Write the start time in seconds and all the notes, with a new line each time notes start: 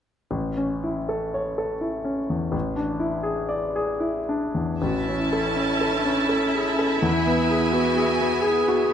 0.31 A1
0.57 C#4
0.84 E4
1.09 A4
1.34 C#5
1.58 A4
1.81 E4
2.05 C#4
2.30 E2
2.52 A1
2.76 D4
3.00 E4
3.23 G#4
3.49 D5
3.76 G#4
4.00 E4
4.29 D4
4.55 E2
4.82 A1 C#4 E4 F#4 E5 A5
5.08 C#4
5.21 E4
5.33 A4
5.56 C#4
5.81 A4
5.94 D4
6.05 C#4
6.29 C#4 A4
6.55 G#4
6.79 A4
7.02 E2 B3 E4 G#5
7.26 B3
7.50 G#4
7.72 B3 F#4
7.96 G#4
8.21 B3
8.42 G#4
8.68 F#4